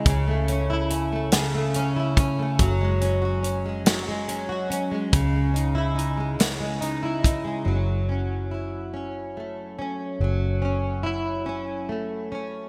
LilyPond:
<<
  \new Staff \with { instrumentName = "Nylon-string guitar" } { \time 6/8 \key fis \dorian \tempo 4. = 47 cis16 a16 cis'16 e'16 cis'16 a16 cis16 a16 cis'16 e'16 cis'16 a16 | fis16 gis16 cis'16 fis'16 cis'16 gis16 fis16 gis16 cis'16 fis'16 cis'16 gis16 | cis16 gis16 dis'16 e'16 dis'16 gis16 cis16 gis16 dis'16 e'16 dis'16 gis16 | fis8 cis'8 e'8 cis'8 a8 cis'8 |
fis8 cis'8 e'8 cis'8 a8 cis'8 | }
  \new Staff \with { instrumentName = "Fingered electric bass" } { \clef bass \time 6/8 \key fis \dorian cis,2. | fis,,2. | cis,2. | fis,,2. |
fis,,2. | }
  \new DrumStaff \with { instrumentName = "Drums" } \drummode { \time 6/8 <hh bd>8 hh8 hh8 <hh sn>8 hh8 <hh bd>8 | <hh bd>8 hh8 hh8 <hh sn>8 hh8 hh8 | <hh bd>8 hh8 hh8 <hh sn>8 hh8 <hh bd>8 | r4. r4. |
r4. r4. | }
>>